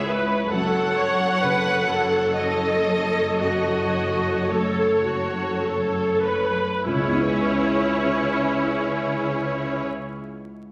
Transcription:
Already playing: C#2 G#3 E4 C#5
0.08 B4
0.51 F#1 F#2 A4 C#5 F#5
0.96 C#5
1.42 C#3 B4
1.89 A4
2.38 A4 D#5
3.40 F#2 F#4 D#5
4.49 A3 A4 C#5
5.04 F#4
5.62 A4
6.23 B4
6.85 C#2 C#3 C#4 E4 G#4 B4 C#5
6.93 C#3
7.00 G#3
7.07 B3
7.14 E4
7.21 B4

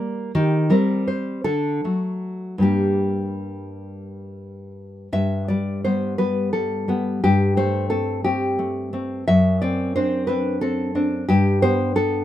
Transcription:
Already playing: G3 A#3 D5
0.35 D#3 G4
0.70 G3 C4 A#4
1.08 C5
1.44 D3 A4
1.84 F#3 A3
2.58 G2 G3 A#3
2.62 G4
5.13 G2 E5
5.48 G3 D5
5.85 G3 B3 C5
6.18 G3 B3 B4
6.53 G3 A4
6.88 G3 B3
7.24 G2 G4
7.57 A3 C5
7.90 A3 C4 A4
8.24 A3 C4 G4
8.59 A3
8.93 A3 C4
9.28 F#2 E5
9.62 C4 D5
9.96 C4 D4 C5
10.27 C4 D4 B4
10.61 C4 A4
10.95 C4 D4
11.29 G2 G4
11.62 B3 C5
11.95 B3 D4 A4

